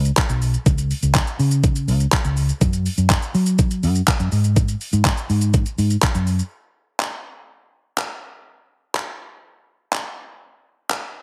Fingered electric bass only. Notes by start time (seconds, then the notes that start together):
0.29 B1
0.66 C#2
1.03 C#2
1.39 C#3
1.88 C#2
2.25 C#2
2.61 F#2
2.98 F#2
3.34 F#3
3.83 F#2
4.20 F#2
4.32 G#2
4.93 G#2
5.30 G#2
5.78 G#2
6.15 F#2